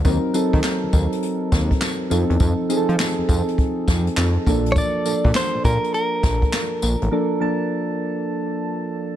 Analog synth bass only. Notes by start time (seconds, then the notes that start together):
0.05 D#2
0.34 D#3
0.54 D#3
0.83 D#2
0.93 D#2
1.52 D#2
2.11 F2
2.30 E2
2.40 F2
2.70 F3
2.89 F3
3.18 F2
3.29 F2
3.88 F2
4.17 F2
4.47 A#1
5.06 A#2
5.25 A#2
5.55 A#2
5.65 A#2
6.23 A#1
6.83 A#1
7.02 A1